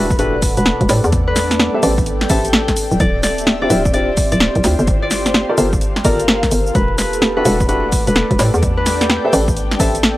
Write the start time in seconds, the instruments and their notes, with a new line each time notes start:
Already playing: fm bass E1, ambient pad G3 A3 D4 F#5, analog synth pad A4 D5, harp B4 E5, impact
0.00 analog synth pad F#5
0.10 kick, cabasa
0.19 grand piano D4 E4 F#4 G4 A4, harp B4, closed hi-hat, cabasa
0.42 kick, open hi-hat, cabasa
0.57 fm bass E1, harp B4, closed hi-hat, cabasa
0.66 snare, cabasa
0.81 fm bass E1, kick, closed hi-hat
0.89 fm bass A2, ambient pad B3 C4 G4, grand piano G4 A4 B4 C5 D5, snare, open hi-hat, cabasa
1.04 fm bass E2, cabasa
1.12 kick, closed hi-hat, cabasa
1.28 harp B4
1.36 snare, open hi-hat, cabasa
1.51 snare, closed hi-hat, cabasa
1.60 snare, cabasa
1.74 grand piano G4 A4 B4 C5 E5, analog synth pad G5
1.83 fm bass A1, grand piano G4 A4 B4 C5 D5, open hi-hat, cabasa
1.98 kick, cabasa
2.06 closed hi-hat, cabasa
2.21 snare
2.30 fm bass A1, grand piano G4 A4 B4 C5 E5, harp A4, kick, open hi-hat, cabasa
2.45 closed hi-hat, cabasa
2.53 snare, cabasa
2.68 kick, snare, closed hi-hat
2.76 ambient pad E4 F4, analog synth pad G4, open hi-hat, cabasa
2.91 fm bass D1, cabasa
3.00 fm bass D1, harp D5, kick, closed hi-hat, cabasa
3.05 analog synth pad E5
3.23 harp D5, snare, open hi-hat, cabasa
3.37 analog synth pad C5, closed hi-hat, cabasa
3.47 snare, cabasa
3.62 grand piano C4 D4 E4 F4 G4, harp D5
3.70 fm bass D1, grand piano C4 D4 E4 F4 G4, open hi-hat, cabasa
3.85 kick, cabasa
3.94 grand piano C4 D4 E4 F4 G4, harp D5, closed hi-hat, cabasa
4.17 kick, open hi-hat, cabasa
4.32 fm bass D1, harp D5, closed hi-hat, cabasa
4.40 snare, cabasa
4.55 fm bass D1, kick, closed hi-hat
4.64 fm bass D2, grand piano C4 D4 E4 F4 G4, snare, open hi-hat, cabasa
4.79 fm bass G1, cabasa
4.87 ambient pad A#3 A4, kick, closed hi-hat, cabasa
5.02 harp D5
5.11 snare, open hi-hat, cabasa
5.26 snare, closed hi-hat, cabasa
5.34 snare, cabasa
5.49 grand piano F4 G4 A4 A#4 D5
5.58 fm bass G1, grand piano F4 G4 A4 A#4 C5, open hi-hat, cabasa
5.73 analog synth pad F5, kick, cabasa
5.81 closed hi-hat, cabasa
5.96 snare
6.05 fm bass G1, grand piano F4 G4 A4 A#4 D5, harp A#4, kick, open hi-hat, cabasa
6.20 closed hi-hat, cabasa
6.28 snare, cabasa
6.43 fm bass D2, kick, snare, closed hi-hat
6.51 fm bass G1, open hi-hat, cabasa
6.67 cabasa
6.75 fm bass E1, ambient pad A3 D4 G4 F#5, analog synth pad A4, harp B4, kick, closed hi-hat, cabasa
6.98 harp B4, snare, open hi-hat, cabasa
7.13 analog synth pad F#5, closed hi-hat, cabasa
7.22 snare, cabasa
7.37 grand piano D4 E4 F#4 G4 A4, harp B4, analog synth pad D5
7.45 fm bass E1, grand piano D4 E4 F#4 G4 A4, open hi-hat, cabasa
7.60 kick, cabasa
7.69 grand piano D4 E4 F#4 G4 A4, harp B4, closed hi-hat, cabasa
7.92 kick, open hi-hat, cabasa
8.07 fm bass E1, harp B4, closed hi-hat, cabasa
8.16 snare, cabasa
8.31 fm bass E1, kick, closed hi-hat
8.39 fm bass A2, ambient pad B3 C4 G4, grand piano G4 A4 B4 C5 D5, snare, open hi-hat, cabasa
8.54 fm bass E2, analog synth pad G5, cabasa
8.63 kick, closed hi-hat, cabasa
8.77 harp B4
8.86 snare, open hi-hat, cabasa
9.01 snare, closed hi-hat, cabasa
9.10 snare, cabasa
9.25 grand piano G4 A4 B4 C5 E5
9.33 fm bass A1, grand piano G4 A4 B4 C5 D5, open hi-hat, cabasa
9.48 kick, cabasa
9.57 closed hi-hat, cabasa
9.71 snare
9.79 fm bass A1, grand piano G4 A4 B4 C5 E5, harp A4, kick, open hi-hat, cabasa
9.95 closed hi-hat, cabasa
10.03 snare, cabasa